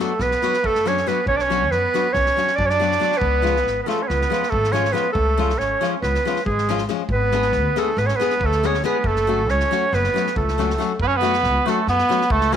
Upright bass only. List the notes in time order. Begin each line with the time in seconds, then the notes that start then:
0.19 B1
0.63 F#2
1.26 B1
1.71 F#2
2.14 B1
2.58 F#2
3.22 C#2
3.66 G#1
4.10 C#2
4.54 G#1
5.15 C#2
5.59 G#1
6.02 C#2
6.46 G#1
7.09 G#1
7.53 D2
7.97 G#1
8.40 D2
9.04 F#1
9.48 C#2
9.93 F#1
10.37 C#2
11.00 F#2
11.43 C#2
11.87 F#2
12.30 C#2